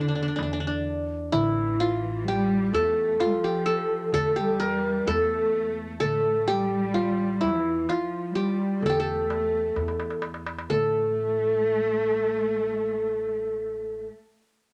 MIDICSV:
0, 0, Header, 1, 6, 480
1, 0, Start_track
1, 0, Tempo, 936914
1, 680, Time_signature, 10, 3, 24, 8
1, 7547, End_track
2, 0, Start_track
2, 0, Title_t, "Ney"
2, 0, Program_c, 0, 77
2, 0, Note_on_c, 0, 62, 74
2, 181, Note_off_c, 0, 62, 0
2, 193, Note_on_c, 0, 62, 61
2, 420, Note_off_c, 0, 62, 0
2, 679, Note_on_c, 0, 64, 65
2, 914, Note_on_c, 0, 65, 75
2, 922, Note_off_c, 0, 64, 0
2, 1150, Note_on_c, 0, 67, 77
2, 1157, Note_off_c, 0, 65, 0
2, 1393, Note_on_c, 0, 69, 91
2, 1401, Note_off_c, 0, 67, 0
2, 1876, Note_off_c, 0, 69, 0
2, 1879, Note_on_c, 0, 69, 72
2, 2103, Note_off_c, 0, 69, 0
2, 2119, Note_on_c, 0, 69, 78
2, 2364, Note_on_c, 0, 70, 88
2, 2372, Note_off_c, 0, 69, 0
2, 2607, Note_on_c, 0, 69, 91
2, 2615, Note_off_c, 0, 70, 0
2, 2946, Note_off_c, 0, 69, 0
2, 3080, Note_on_c, 0, 70, 69
2, 3098, Note_on_c, 0, 69, 75
2, 3103, Note_off_c, 0, 70, 0
2, 3290, Note_off_c, 0, 69, 0
2, 3290, Note_on_c, 0, 69, 57
2, 3315, Note_on_c, 0, 67, 71
2, 3323, Note_off_c, 0, 69, 0
2, 3550, Note_on_c, 0, 65, 76
2, 3558, Note_off_c, 0, 67, 0
2, 3786, Note_on_c, 0, 64, 70
2, 3794, Note_off_c, 0, 65, 0
2, 4030, Note_on_c, 0, 65, 84
2, 4038, Note_off_c, 0, 64, 0
2, 4515, Note_on_c, 0, 69, 73
2, 4522, Note_off_c, 0, 65, 0
2, 4581, Note_off_c, 0, 69, 0
2, 4584, Note_on_c, 0, 69, 66
2, 4622, Note_on_c, 0, 67, 54
2, 4630, Note_off_c, 0, 69, 0
2, 4661, Note_on_c, 0, 69, 79
2, 4669, Note_off_c, 0, 67, 0
2, 5239, Note_off_c, 0, 69, 0
2, 5477, Note_on_c, 0, 70, 82
2, 5502, Note_on_c, 0, 69, 89
2, 5507, Note_off_c, 0, 70, 0
2, 7203, Note_off_c, 0, 69, 0
2, 7547, End_track
3, 0, Start_track
3, 0, Title_t, "Qanun"
3, 0, Program_c, 1, 107
3, 0, Note_on_c, 1, 64, 87
3, 5, Note_on_c, 1, 62, 42
3, 41, Note_off_c, 1, 62, 0
3, 43, Note_on_c, 1, 62, 49
3, 77, Note_off_c, 1, 62, 0
3, 79, Note_on_c, 1, 62, 41
3, 113, Note_off_c, 1, 62, 0
3, 115, Note_on_c, 1, 62, 53
3, 141, Note_off_c, 1, 62, 0
3, 143, Note_on_c, 1, 62, 46
3, 182, Note_off_c, 1, 62, 0
3, 184, Note_on_c, 1, 62, 54
3, 201, Note_off_c, 1, 64, 0
3, 216, Note_off_c, 1, 62, 0
3, 218, Note_on_c, 1, 62, 46
3, 269, Note_off_c, 1, 62, 0
3, 271, Note_on_c, 1, 62, 56
3, 306, Note_off_c, 1, 62, 0
3, 309, Note_on_c, 1, 62, 49
3, 342, Note_off_c, 1, 62, 0
3, 344, Note_on_c, 1, 62, 59
3, 678, Note_on_c, 1, 64, 91
3, 923, Note_on_c, 1, 65, 88
3, 953, Note_off_c, 1, 64, 0
3, 1109, Note_off_c, 1, 62, 0
3, 1169, Note_on_c, 1, 67, 80
3, 1406, Note_on_c, 1, 69, 91
3, 1612, Note_off_c, 1, 65, 0
3, 1641, Note_on_c, 1, 65, 82
3, 1761, Note_off_c, 1, 67, 0
3, 1763, Note_on_c, 1, 67, 76
3, 1872, Note_off_c, 1, 69, 0
3, 1874, Note_on_c, 1, 69, 92
3, 2117, Note_off_c, 1, 69, 0
3, 2120, Note_on_c, 1, 69, 105
3, 2232, Note_off_c, 1, 67, 0
3, 2234, Note_on_c, 1, 67, 82
3, 2330, Note_off_c, 1, 65, 0
3, 2355, Note_on_c, 1, 70, 90
3, 2385, Note_off_c, 1, 69, 0
3, 2600, Note_on_c, 1, 69, 99
3, 2630, Note_off_c, 1, 70, 0
3, 2877, Note_off_c, 1, 67, 0
3, 3072, Note_off_c, 1, 69, 0
3, 3074, Note_on_c, 1, 69, 97
3, 3318, Note_on_c, 1, 67, 96
3, 3557, Note_on_c, 1, 65, 72
3, 3674, Note_off_c, 1, 69, 0
3, 3795, Note_on_c, 1, 64, 75
3, 3826, Note_off_c, 1, 65, 0
3, 3961, Note_off_c, 1, 67, 0
3, 4044, Note_on_c, 1, 65, 81
3, 4075, Note_off_c, 1, 64, 0
3, 4279, Note_on_c, 1, 67, 74
3, 4539, Note_on_c, 1, 69, 83
3, 4556, Note_off_c, 1, 67, 0
3, 4558, Note_on_c, 1, 67, 70
3, 4607, Note_off_c, 1, 69, 0
3, 4609, Note_on_c, 1, 69, 78
3, 4733, Note_off_c, 1, 65, 0
3, 5201, Note_off_c, 1, 67, 0
3, 5229, Note_off_c, 1, 69, 0
3, 5481, Note_on_c, 1, 69, 76
3, 7208, Note_off_c, 1, 69, 0
3, 7547, End_track
4, 0, Start_track
4, 0, Title_t, "Cello section"
4, 0, Program_c, 2, 48
4, 0, Note_on_c, 2, 50, 71
4, 440, Note_off_c, 2, 50, 0
4, 681, Note_on_c, 2, 52, 77
4, 1140, Note_off_c, 2, 52, 0
4, 1156, Note_on_c, 2, 55, 92
4, 1398, Note_off_c, 2, 55, 0
4, 1401, Note_on_c, 2, 57, 80
4, 1640, Note_on_c, 2, 53, 90
4, 1641, Note_off_c, 2, 57, 0
4, 2120, Note_off_c, 2, 53, 0
4, 2126, Note_on_c, 2, 57, 79
4, 2235, Note_off_c, 2, 57, 0
4, 2249, Note_on_c, 2, 55, 83
4, 2605, Note_off_c, 2, 55, 0
4, 2611, Note_on_c, 2, 57, 87
4, 3081, Note_off_c, 2, 57, 0
4, 3087, Note_on_c, 2, 57, 78
4, 3307, Note_off_c, 2, 57, 0
4, 3321, Note_on_c, 2, 55, 94
4, 3801, Note_off_c, 2, 55, 0
4, 3805, Note_on_c, 2, 52, 72
4, 4042, Note_on_c, 2, 53, 78
4, 4043, Note_off_c, 2, 52, 0
4, 4280, Note_on_c, 2, 55, 77
4, 4281, Note_off_c, 2, 53, 0
4, 4520, Note_off_c, 2, 55, 0
4, 4524, Note_on_c, 2, 57, 75
4, 4585, Note_off_c, 2, 57, 0
4, 4591, Note_on_c, 2, 57, 79
4, 5220, Note_off_c, 2, 57, 0
4, 5484, Note_on_c, 2, 57, 97
4, 7210, Note_off_c, 2, 57, 0
4, 7547, End_track
5, 0, Start_track
5, 0, Title_t, "Upright bass"
5, 0, Program_c, 3, 32
5, 0, Note_on_c, 3, 40, 75
5, 181, Note_off_c, 3, 40, 0
5, 198, Note_on_c, 3, 40, 86
5, 659, Note_off_c, 3, 40, 0
5, 681, Note_on_c, 3, 33, 92
5, 1380, Note_off_c, 3, 33, 0
5, 1400, Note_on_c, 3, 40, 97
5, 1621, Note_off_c, 3, 40, 0
5, 2119, Note_on_c, 3, 40, 85
5, 2580, Note_off_c, 3, 40, 0
5, 2595, Note_on_c, 3, 40, 93
5, 3058, Note_off_c, 3, 40, 0
5, 3078, Note_on_c, 3, 33, 86
5, 3779, Note_off_c, 3, 33, 0
5, 3800, Note_on_c, 3, 40, 97
5, 4021, Note_off_c, 3, 40, 0
5, 4520, Note_on_c, 3, 40, 81
5, 4980, Note_off_c, 3, 40, 0
5, 5000, Note_on_c, 3, 40, 84
5, 5460, Note_off_c, 3, 40, 0
5, 5482, Note_on_c, 3, 33, 88
5, 7209, Note_off_c, 3, 33, 0
5, 7547, End_track
6, 0, Start_track
6, 0, Title_t, "Darbuka"
6, 198, Note_on_c, 9, 63, 71
6, 249, Note_off_c, 9, 63, 0
6, 440, Note_on_c, 9, 62, 26
6, 491, Note_off_c, 9, 62, 0
6, 679, Note_on_c, 9, 64, 85
6, 730, Note_off_c, 9, 64, 0
6, 1158, Note_on_c, 9, 62, 26
6, 1210, Note_off_c, 9, 62, 0
6, 1638, Note_on_c, 9, 63, 63
6, 1689, Note_off_c, 9, 63, 0
6, 2113, Note_on_c, 9, 64, 76
6, 2165, Note_off_c, 9, 64, 0
6, 2359, Note_on_c, 9, 63, 64
6, 2410, Note_off_c, 9, 63, 0
6, 2603, Note_on_c, 9, 63, 68
6, 2654, Note_off_c, 9, 63, 0
6, 2841, Note_on_c, 9, 62, 27
6, 2893, Note_off_c, 9, 62, 0
6, 3080, Note_on_c, 9, 64, 74
6, 3132, Note_off_c, 9, 64, 0
6, 3921, Note_on_c, 9, 62, 25
6, 3972, Note_off_c, 9, 62, 0
6, 4042, Note_on_c, 9, 63, 67
6, 4093, Note_off_c, 9, 63, 0
6, 4524, Note_on_c, 9, 64, 78
6, 4575, Note_off_c, 9, 64, 0
6, 4766, Note_on_c, 9, 63, 75
6, 4817, Note_off_c, 9, 63, 0
6, 5002, Note_on_c, 9, 63, 53
6, 5053, Note_off_c, 9, 63, 0
6, 5062, Note_on_c, 9, 62, 64
6, 5114, Note_off_c, 9, 62, 0
6, 5121, Note_on_c, 9, 63, 65
6, 5172, Note_off_c, 9, 63, 0
6, 5177, Note_on_c, 9, 62, 68
6, 5228, Note_off_c, 9, 62, 0
6, 5236, Note_on_c, 9, 63, 80
6, 5287, Note_off_c, 9, 63, 0
6, 5298, Note_on_c, 9, 62, 78
6, 5349, Note_off_c, 9, 62, 0
6, 5361, Note_on_c, 9, 63, 85
6, 5413, Note_off_c, 9, 63, 0
6, 5423, Note_on_c, 9, 62, 87
6, 5474, Note_off_c, 9, 62, 0
6, 5480, Note_on_c, 9, 64, 74
6, 5531, Note_off_c, 9, 64, 0
6, 7547, End_track
0, 0, End_of_file